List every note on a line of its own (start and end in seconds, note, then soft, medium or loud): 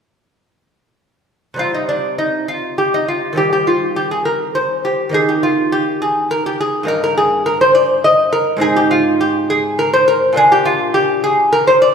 1.54 3.31 C3 medium
1.54 3.32 G3 soft
1.54 3.33 C4 soft
1.59 1.74 F4 medium
1.74 1.88 D#4 medium
1.89 2.18 D4 medium
2.18 2.47 D#4 medium
2.48 2.77 F4 medium
2.78 2.93 G4 medium
2.94 3.08 D#4 medium
3.08 3.37 F4 medium
3.33 5.08 D#3 medium
3.33 5.08 G3 soft
3.33 5.09 C4 soft
3.37 3.51 G4 medium
3.53 3.67 G4 medium
3.67 3.95 F4 medium
3.96 4.11 G4 medium
4.11 4.25 G#4 medium
4.25 4.54 A#4 medium
4.55 4.83 C5 medium
4.85 5.13 G4 medium
5.09 6.83 D#3 medium
5.09 6.84 A#3 soft
5.09 6.84 D#4 soft
5.14 5.29 G#4 medium
5.29 5.44 G4 medium
5.43 5.71 F4 medium
5.72 6.01 G4 medium
6.02 6.30 G#4 medium
6.31 6.46 A#4 medium
6.46 6.60 G4 medium
6.61 6.88 G#4 medium
6.83 8.56 G2 medium
6.83 8.56 A#3 medium
6.83 8.57 D#4 medium
6.88 7.02 A#4 loud
7.04 7.17 A#4 medium
7.17 7.46 G#4 medium
7.46 7.61 A#4 loud
7.61 7.74 C5 medium
7.75 8.03 D5 loud
8.04 8.32 D#5 loud
8.33 8.61 A#4 loud
8.57 10.30 G#2 medium
8.57 10.31 C4 medium
8.57 10.31 D#4 medium
8.61 8.76 G#4 medium
8.76 8.91 G4 medium
8.91 9.19 F4 medium
9.21 9.49 G4 medium
9.50 9.78 G#4 medium
9.79 9.93 A#4 loud
9.93 10.07 C5 loud
10.08 10.36 A#4 loud
10.33 11.95 A#2 medium
10.33 11.95 A#3 medium
10.33 11.95 D4 medium
10.37 10.52 G#4 loud
10.52 10.66 G4 loud
10.65 10.94 F4 medium
10.94 11.23 G4 loud
11.24 11.52 G#4 medium
11.53 11.67 A#4 loud
11.67 11.81 C5 loud
11.82 11.95 D5 loud